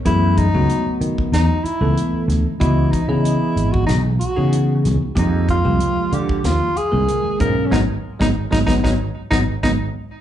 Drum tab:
HH |x-x-x-x-x-x-x-x-|x-x-x-x-x-x-x-x-|x-x-x-x-x-x-x-x-|----------------|
SD |--------o-----o-|--------o-----o-|--------o-------|o--o-ooo--o-o---|
BD |o-o----o--------|o-o----o--------|o-o----o------o-|o--o-ooo--o-o---|